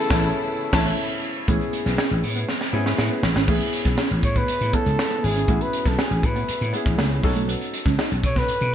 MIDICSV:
0, 0, Header, 1, 9, 480
1, 0, Start_track
1, 0, Key_signature, 3, "major"
1, 0, Tempo, 500417
1, 1419, Time_signature, 4, 2, 24, 8
1, 8390, End_track
2, 0, Start_track
2, 0, Title_t, "Flugelhorn"
2, 0, Program_c, 0, 56
2, 0, Note_on_c, 0, 69, 99
2, 1180, Note_off_c, 0, 69, 0
2, 4072, Note_on_c, 0, 73, 92
2, 4196, Note_on_c, 0, 71, 94
2, 4211, Note_off_c, 0, 73, 0
2, 4554, Note_on_c, 0, 69, 89
2, 4569, Note_off_c, 0, 71, 0
2, 5031, Note_on_c, 0, 68, 84
2, 5045, Note_off_c, 0, 69, 0
2, 5394, Note_on_c, 0, 71, 77
2, 5408, Note_off_c, 0, 68, 0
2, 5641, Note_on_c, 0, 69, 81
2, 5656, Note_off_c, 0, 71, 0
2, 5760, Note_on_c, 0, 68, 78
2, 5774, Note_off_c, 0, 69, 0
2, 6004, Note_on_c, 0, 71, 84
2, 6019, Note_off_c, 0, 68, 0
2, 6471, Note_off_c, 0, 71, 0
2, 7922, Note_on_c, 0, 73, 92
2, 8037, Note_on_c, 0, 71, 100
2, 8052, Note_off_c, 0, 73, 0
2, 8390, Note_off_c, 0, 71, 0
2, 8390, End_track
3, 0, Start_track
3, 0, Title_t, "Grand piano"
3, 0, Program_c, 1, 0
3, 0, Control_c, 1, 64, 127
3, 0, Note_on_c, 1, 59, 79
3, 0, Note_on_c, 1, 61, 103
3, 0, Note_on_c, 1, 64, 102
3, 0, Note_on_c, 1, 68, 100
3, 100, Note_off_c, 1, 61, 0
3, 100, Note_on_c, 1, 61, 91
3, 100, Note_on_c, 1, 81, 95
3, 102, Note_off_c, 1, 64, 0
3, 102, Note_on_c, 1, 64, 92
3, 263, Note_off_c, 1, 61, 0
3, 263, Note_off_c, 1, 81, 0
3, 264, Note_off_c, 1, 64, 0
3, 703, Note_on_c, 1, 61, 98
3, 705, Note_on_c, 1, 64, 102
3, 706, Note_on_c, 1, 81, 100
3, 865, Note_off_c, 1, 61, 0
3, 866, Note_off_c, 1, 64, 0
3, 866, Note_off_c, 1, 81, 0
3, 1418, Note_off_c, 1, 59, 0
3, 1418, Note_on_c, 1, 59, 81
3, 1425, Note_on_c, 1, 61, 75
3, 1428, Note_on_c, 1, 64, 75
3, 1432, Control_c, 1, 64, 0
3, 1433, Note_off_c, 1, 68, 0
3, 1433, Note_on_c, 1, 68, 92
3, 1580, Control_c, 1, 64, 127
3, 2040, Note_off_c, 1, 59, 0
3, 2043, Note_off_c, 1, 61, 0
3, 2045, Note_off_c, 1, 64, 0
3, 2047, Note_off_c, 1, 68, 0
3, 2614, Note_on_c, 1, 59, 82
3, 2615, Note_on_c, 1, 61, 79
3, 2619, Note_on_c, 1, 64, 79
3, 2622, Note_on_c, 1, 68, 94
3, 3082, Note_off_c, 1, 59, 0
3, 3083, Note_off_c, 1, 61, 0
3, 3085, Note_off_c, 1, 64, 0
3, 3087, Note_off_c, 1, 68, 0
3, 3329, Note_on_c, 1, 59, 82
3, 3331, Note_on_c, 1, 61, 75
3, 3335, Note_on_c, 1, 64, 73
3, 3342, Note_on_c, 1, 68, 93
3, 3350, Control_c, 1, 64, 0
3, 3545, Control_c, 1, 64, 127
3, 3955, Note_off_c, 1, 59, 0
3, 3956, Note_off_c, 1, 61, 0
3, 3958, Note_off_c, 1, 64, 0
3, 3962, Note_off_c, 1, 68, 0
3, 4528, Note_on_c, 1, 59, 72
3, 4533, Note_on_c, 1, 61, 66
3, 4534, Note_on_c, 1, 64, 61
3, 4540, Note_on_c, 1, 69, 73
3, 4844, Note_off_c, 1, 59, 0
3, 4846, Note_off_c, 1, 61, 0
3, 4847, Note_off_c, 1, 64, 0
3, 4850, Note_off_c, 1, 69, 0
3, 5012, Note_on_c, 1, 59, 67
3, 5018, Note_on_c, 1, 61, 58
3, 5020, Note_on_c, 1, 64, 57
3, 5024, Note_on_c, 1, 68, 68
3, 5171, Note_off_c, 1, 59, 0
3, 5174, Note_off_c, 1, 61, 0
3, 5175, Note_off_c, 1, 64, 0
3, 5177, Note_off_c, 1, 68, 0
3, 5257, Note_on_c, 1, 59, 68
3, 5257, Note_on_c, 1, 61, 61
3, 5265, Note_on_c, 1, 64, 63
3, 5267, Note_on_c, 1, 66, 77
3, 5879, Note_off_c, 1, 59, 0
3, 5879, Note_off_c, 1, 61, 0
3, 5883, Note_off_c, 1, 64, 0
3, 5884, Note_off_c, 1, 66, 0
3, 6451, Note_on_c, 1, 59, 74
3, 6454, Note_on_c, 1, 61, 65
3, 6458, Note_on_c, 1, 64, 62
3, 6462, Note_on_c, 1, 68, 81
3, 6766, Note_off_c, 1, 59, 0
3, 6767, Note_off_c, 1, 61, 0
3, 6769, Note_off_c, 1, 64, 0
3, 6771, Note_off_c, 1, 68, 0
3, 6931, Note_on_c, 1, 61, 84
3, 6938, Note_on_c, 1, 63, 77
3, 6939, Note_on_c, 1, 66, 81
3, 6944, Note_on_c, 1, 69, 98
3, 6950, Control_c, 1, 64, 0
3, 7124, Control_c, 1, 64, 127
3, 7702, Note_off_c, 1, 61, 0
3, 7706, Note_off_c, 1, 63, 0
3, 7707, Note_off_c, 1, 66, 0
3, 7709, Note_off_c, 1, 69, 0
3, 8390, End_track
4, 0, Start_track
4, 0, Title_t, "Clean electric guitar"
4, 0, Program_c, 2, 27
4, 1418, Note_on_c, 2, 57, 90
4, 1489, Note_off_c, 2, 57, 0
4, 1779, Note_on_c, 2, 59, 64
4, 1850, Note_off_c, 2, 59, 0
4, 1900, Note_on_c, 2, 61, 77
4, 1971, Note_off_c, 2, 61, 0
4, 2257, Note_on_c, 2, 59, 69
4, 2329, Note_off_c, 2, 59, 0
4, 2617, Note_on_c, 2, 59, 77
4, 2689, Note_off_c, 2, 59, 0
4, 2976, Note_on_c, 2, 59, 80
4, 3048, Note_off_c, 2, 59, 0
4, 3215, Note_on_c, 2, 61, 72
4, 3287, Note_off_c, 2, 61, 0
4, 3336, Note_on_c, 2, 57, 81
4, 3408, Note_off_c, 2, 57, 0
4, 3697, Note_on_c, 2, 59, 64
4, 3769, Note_off_c, 2, 59, 0
4, 3824, Note_on_c, 2, 61, 76
4, 3893, Note_off_c, 2, 61, 0
4, 4181, Note_on_c, 2, 59, 69
4, 4252, Note_off_c, 2, 59, 0
4, 4540, Note_on_c, 2, 59, 75
4, 4611, Note_off_c, 2, 59, 0
4, 4897, Note_on_c, 2, 59, 77
4, 4969, Note_off_c, 2, 59, 0
4, 5140, Note_on_c, 2, 61, 72
4, 5211, Note_off_c, 2, 61, 0
4, 5261, Note_on_c, 2, 57, 77
4, 5332, Note_off_c, 2, 57, 0
4, 5621, Note_on_c, 2, 59, 63
4, 5691, Note_off_c, 2, 59, 0
4, 5742, Note_on_c, 2, 61, 67
4, 5812, Note_off_c, 2, 61, 0
4, 6094, Note_on_c, 2, 59, 70
4, 6167, Note_off_c, 2, 59, 0
4, 6454, Note_on_c, 2, 59, 73
4, 6527, Note_off_c, 2, 59, 0
4, 6693, Note_on_c, 2, 57, 75
4, 6766, Note_off_c, 2, 57, 0
4, 7052, Note_on_c, 2, 57, 78
4, 7125, Note_off_c, 2, 57, 0
4, 7175, Note_on_c, 2, 59, 80
4, 7247, Note_off_c, 2, 59, 0
4, 7535, Note_on_c, 2, 61, 69
4, 7608, Note_off_c, 2, 61, 0
4, 7657, Note_on_c, 2, 63, 76
4, 7729, Note_off_c, 2, 63, 0
4, 8017, Note_on_c, 2, 59, 72
4, 8089, Note_off_c, 2, 59, 0
4, 8390, End_track
5, 0, Start_track
5, 0, Title_t, "String section"
5, 0, Program_c, 3, 48
5, 0, Note_on_c, 3, 49, 82
5, 0, Note_on_c, 3, 52, 78
5, 0, Note_on_c, 3, 57, 77
5, 0, Note_on_c, 3, 64, 91
5, 1377, Note_off_c, 3, 49, 0
5, 1402, Note_off_c, 3, 64, 0
5, 1404, Note_off_c, 3, 57, 0
5, 1405, Note_off_c, 3, 52, 0
5, 8390, End_track
6, 0, Start_track
6, 0, Title_t, "Slap bass"
6, 0, Program_c, 4, 36
6, 100, Note_on_c, 4, 33, 112
6, 263, Note_off_c, 4, 33, 0
6, 702, Note_on_c, 4, 33, 101
6, 864, Note_off_c, 4, 33, 0
6, 1420, Note_on_c, 4, 33, 105
6, 1516, Note_off_c, 4, 33, 0
6, 1783, Note_on_c, 4, 35, 86
6, 1878, Note_off_c, 4, 35, 0
6, 2025, Note_on_c, 4, 33, 90
6, 2119, Note_off_c, 4, 33, 0
6, 2142, Note_on_c, 4, 45, 90
6, 2334, Note_off_c, 4, 45, 0
6, 2619, Note_on_c, 4, 44, 91
6, 2812, Note_off_c, 4, 44, 0
6, 2864, Note_on_c, 4, 45, 87
6, 2958, Note_off_c, 4, 45, 0
6, 3096, Note_on_c, 4, 33, 87
6, 3194, Note_off_c, 4, 33, 0
6, 3217, Note_on_c, 4, 32, 81
6, 3314, Note_off_c, 4, 32, 0
6, 3340, Note_on_c, 4, 33, 101
6, 3436, Note_off_c, 4, 33, 0
6, 3697, Note_on_c, 4, 35, 86
6, 3794, Note_off_c, 4, 35, 0
6, 3943, Note_on_c, 4, 33, 88
6, 4038, Note_off_c, 4, 33, 0
6, 4059, Note_on_c, 4, 45, 92
6, 4252, Note_off_c, 4, 45, 0
6, 4422, Note_on_c, 4, 45, 87
6, 4517, Note_off_c, 4, 45, 0
6, 4663, Note_on_c, 4, 37, 80
6, 4758, Note_off_c, 4, 37, 0
6, 5025, Note_on_c, 4, 32, 81
6, 5216, Note_off_c, 4, 32, 0
6, 5257, Note_on_c, 4, 33, 101
6, 5354, Note_off_c, 4, 33, 0
6, 5616, Note_on_c, 4, 35, 88
6, 5714, Note_off_c, 4, 35, 0
6, 5859, Note_on_c, 4, 33, 90
6, 5955, Note_off_c, 4, 33, 0
6, 5980, Note_on_c, 4, 45, 89
6, 6173, Note_off_c, 4, 45, 0
6, 6343, Note_on_c, 4, 45, 88
6, 6438, Note_off_c, 4, 45, 0
6, 6578, Note_on_c, 4, 33, 84
6, 6675, Note_off_c, 4, 33, 0
6, 6708, Note_on_c, 4, 37, 76
6, 6898, Note_off_c, 4, 37, 0
6, 6942, Note_on_c, 4, 35, 94
6, 7231, Note_off_c, 4, 35, 0
6, 7536, Note_on_c, 4, 37, 89
6, 7634, Note_off_c, 4, 37, 0
6, 7785, Note_on_c, 4, 35, 89
6, 7879, Note_off_c, 4, 35, 0
6, 7899, Note_on_c, 4, 47, 88
6, 8092, Note_off_c, 4, 47, 0
6, 8262, Note_on_c, 4, 47, 96
6, 8357, Note_off_c, 4, 47, 0
6, 8390, End_track
7, 0, Start_track
7, 0, Title_t, "Muted clean electric guitar strokes"
7, 1657, Note_on_c, 9, 29, 44
7, 1753, Note_off_c, 9, 29, 0
7, 2138, Note_on_c, 9, 29, 43
7, 2233, Note_off_c, 9, 29, 0
7, 3579, Note_on_c, 9, 29, 42
7, 3675, Note_off_c, 9, 29, 0
7, 4061, Note_on_c, 9, 29, 42
7, 4157, Note_off_c, 9, 29, 0
7, 5017, Note_on_c, 9, 29, 39
7, 5113, Note_off_c, 9, 29, 0
7, 5497, Note_on_c, 9, 29, 45
7, 5593, Note_off_c, 9, 29, 0
7, 5977, Note_on_c, 9, 29, 44
7, 6073, Note_off_c, 9, 29, 0
7, 6938, Note_on_c, 9, 29, 42
7, 7034, Note_off_c, 9, 29, 0
7, 7415, Note_on_c, 9, 29, 43
7, 7511, Note_off_c, 9, 29, 0
7, 7898, Note_on_c, 9, 29, 43
7, 7994, Note_off_c, 9, 29, 0
7, 8390, End_track
8, 0, Start_track
8, 0, Title_t, "Muted slap bass strokes"
8, 4302, Note_on_c, 9, 29, 44
8, 4398, Note_off_c, 9, 29, 0
8, 6225, Note_on_c, 9, 29, 42
8, 6321, Note_off_c, 9, 29, 0
8, 8143, Note_on_c, 9, 29, 42
8, 8239, Note_off_c, 9, 29, 0
8, 8390, End_track
9, 0, Start_track
9, 0, Title_t, "Drums"
9, 100, Note_on_c, 9, 36, 106
9, 101, Note_on_c, 9, 38, 104
9, 196, Note_off_c, 9, 36, 0
9, 197, Note_off_c, 9, 38, 0
9, 698, Note_on_c, 9, 49, 82
9, 700, Note_on_c, 9, 36, 106
9, 702, Note_on_c, 9, 38, 107
9, 794, Note_off_c, 9, 49, 0
9, 796, Note_off_c, 9, 36, 0
9, 798, Note_off_c, 9, 38, 0
9, 1421, Note_on_c, 9, 36, 108
9, 1421, Note_on_c, 9, 42, 75
9, 1516, Note_off_c, 9, 42, 0
9, 1517, Note_off_c, 9, 36, 0
9, 1546, Note_on_c, 9, 42, 33
9, 1641, Note_off_c, 9, 42, 0
9, 1661, Note_on_c, 9, 42, 80
9, 1757, Note_off_c, 9, 42, 0
9, 1785, Note_on_c, 9, 42, 56
9, 1787, Note_on_c, 9, 38, 34
9, 1881, Note_off_c, 9, 42, 0
9, 1883, Note_off_c, 9, 38, 0
9, 1903, Note_on_c, 9, 38, 90
9, 1999, Note_off_c, 9, 38, 0
9, 2025, Note_on_c, 9, 42, 32
9, 2121, Note_off_c, 9, 42, 0
9, 2143, Note_on_c, 9, 46, 74
9, 2239, Note_off_c, 9, 46, 0
9, 2257, Note_on_c, 9, 42, 51
9, 2353, Note_off_c, 9, 42, 0
9, 2384, Note_on_c, 9, 38, 55
9, 2480, Note_off_c, 9, 38, 0
9, 2503, Note_on_c, 9, 38, 54
9, 2599, Note_off_c, 9, 38, 0
9, 2745, Note_on_c, 9, 38, 59
9, 2841, Note_off_c, 9, 38, 0
9, 2863, Note_on_c, 9, 38, 81
9, 2959, Note_off_c, 9, 38, 0
9, 3102, Note_on_c, 9, 38, 89
9, 3198, Note_off_c, 9, 38, 0
9, 3222, Note_on_c, 9, 38, 84
9, 3318, Note_off_c, 9, 38, 0
9, 3337, Note_on_c, 9, 49, 80
9, 3339, Note_on_c, 9, 36, 108
9, 3433, Note_off_c, 9, 49, 0
9, 3435, Note_off_c, 9, 36, 0
9, 3458, Note_on_c, 9, 42, 51
9, 3554, Note_off_c, 9, 42, 0
9, 3576, Note_on_c, 9, 42, 81
9, 3672, Note_off_c, 9, 42, 0
9, 3696, Note_on_c, 9, 36, 76
9, 3698, Note_on_c, 9, 42, 52
9, 3700, Note_on_c, 9, 38, 33
9, 3792, Note_off_c, 9, 36, 0
9, 3794, Note_off_c, 9, 42, 0
9, 3796, Note_off_c, 9, 38, 0
9, 3815, Note_on_c, 9, 38, 90
9, 3911, Note_off_c, 9, 38, 0
9, 3940, Note_on_c, 9, 42, 49
9, 4036, Note_off_c, 9, 42, 0
9, 4058, Note_on_c, 9, 36, 91
9, 4061, Note_on_c, 9, 42, 68
9, 4154, Note_off_c, 9, 36, 0
9, 4157, Note_off_c, 9, 42, 0
9, 4178, Note_on_c, 9, 42, 53
9, 4181, Note_on_c, 9, 36, 88
9, 4274, Note_off_c, 9, 42, 0
9, 4277, Note_off_c, 9, 36, 0
9, 4299, Note_on_c, 9, 42, 85
9, 4395, Note_off_c, 9, 42, 0
9, 4418, Note_on_c, 9, 42, 39
9, 4514, Note_off_c, 9, 42, 0
9, 4538, Note_on_c, 9, 42, 69
9, 4542, Note_on_c, 9, 36, 91
9, 4634, Note_off_c, 9, 42, 0
9, 4637, Note_off_c, 9, 36, 0
9, 4664, Note_on_c, 9, 42, 49
9, 4760, Note_off_c, 9, 42, 0
9, 4787, Note_on_c, 9, 38, 102
9, 4883, Note_off_c, 9, 38, 0
9, 4904, Note_on_c, 9, 42, 48
9, 5000, Note_off_c, 9, 42, 0
9, 5026, Note_on_c, 9, 46, 89
9, 5122, Note_off_c, 9, 46, 0
9, 5142, Note_on_c, 9, 42, 55
9, 5238, Note_off_c, 9, 42, 0
9, 5258, Note_on_c, 9, 36, 108
9, 5260, Note_on_c, 9, 42, 77
9, 5354, Note_off_c, 9, 36, 0
9, 5356, Note_off_c, 9, 42, 0
9, 5381, Note_on_c, 9, 42, 53
9, 5477, Note_off_c, 9, 42, 0
9, 5499, Note_on_c, 9, 42, 79
9, 5595, Note_off_c, 9, 42, 0
9, 5616, Note_on_c, 9, 36, 80
9, 5621, Note_on_c, 9, 42, 57
9, 5622, Note_on_c, 9, 38, 31
9, 5712, Note_off_c, 9, 36, 0
9, 5717, Note_off_c, 9, 42, 0
9, 5718, Note_off_c, 9, 38, 0
9, 5742, Note_on_c, 9, 38, 94
9, 5838, Note_off_c, 9, 38, 0
9, 5867, Note_on_c, 9, 42, 52
9, 5963, Note_off_c, 9, 42, 0
9, 5979, Note_on_c, 9, 36, 93
9, 5981, Note_on_c, 9, 42, 72
9, 6075, Note_off_c, 9, 36, 0
9, 6077, Note_off_c, 9, 42, 0
9, 6100, Note_on_c, 9, 42, 56
9, 6196, Note_off_c, 9, 42, 0
9, 6220, Note_on_c, 9, 42, 90
9, 6316, Note_off_c, 9, 42, 0
9, 6341, Note_on_c, 9, 42, 41
9, 6436, Note_off_c, 9, 42, 0
9, 6459, Note_on_c, 9, 42, 68
9, 6555, Note_off_c, 9, 42, 0
9, 6578, Note_on_c, 9, 42, 48
9, 6579, Note_on_c, 9, 36, 86
9, 6580, Note_on_c, 9, 38, 34
9, 6673, Note_off_c, 9, 42, 0
9, 6675, Note_off_c, 9, 36, 0
9, 6676, Note_off_c, 9, 38, 0
9, 6702, Note_on_c, 9, 38, 103
9, 6797, Note_off_c, 9, 38, 0
9, 6823, Note_on_c, 9, 42, 49
9, 6919, Note_off_c, 9, 42, 0
9, 6939, Note_on_c, 9, 36, 98
9, 6947, Note_on_c, 9, 46, 91
9, 7035, Note_off_c, 9, 36, 0
9, 7043, Note_off_c, 9, 46, 0
9, 7062, Note_on_c, 9, 42, 53
9, 7158, Note_off_c, 9, 42, 0
9, 7183, Note_on_c, 9, 42, 77
9, 7279, Note_off_c, 9, 42, 0
9, 7303, Note_on_c, 9, 42, 52
9, 7399, Note_off_c, 9, 42, 0
9, 7420, Note_on_c, 9, 42, 82
9, 7516, Note_off_c, 9, 42, 0
9, 7536, Note_on_c, 9, 36, 81
9, 7543, Note_on_c, 9, 42, 52
9, 7544, Note_on_c, 9, 38, 34
9, 7632, Note_off_c, 9, 36, 0
9, 7639, Note_off_c, 9, 42, 0
9, 7640, Note_off_c, 9, 38, 0
9, 7662, Note_on_c, 9, 38, 89
9, 7758, Note_off_c, 9, 38, 0
9, 7783, Note_on_c, 9, 42, 50
9, 7879, Note_off_c, 9, 42, 0
9, 7899, Note_on_c, 9, 36, 93
9, 7906, Note_on_c, 9, 42, 71
9, 7995, Note_off_c, 9, 36, 0
9, 8002, Note_off_c, 9, 42, 0
9, 8018, Note_on_c, 9, 42, 52
9, 8021, Note_on_c, 9, 36, 87
9, 8024, Note_on_c, 9, 38, 33
9, 8114, Note_off_c, 9, 42, 0
9, 8117, Note_off_c, 9, 36, 0
9, 8119, Note_off_c, 9, 38, 0
9, 8137, Note_on_c, 9, 42, 90
9, 8233, Note_off_c, 9, 42, 0
9, 8255, Note_on_c, 9, 42, 41
9, 8351, Note_off_c, 9, 42, 0
9, 8390, End_track
0, 0, End_of_file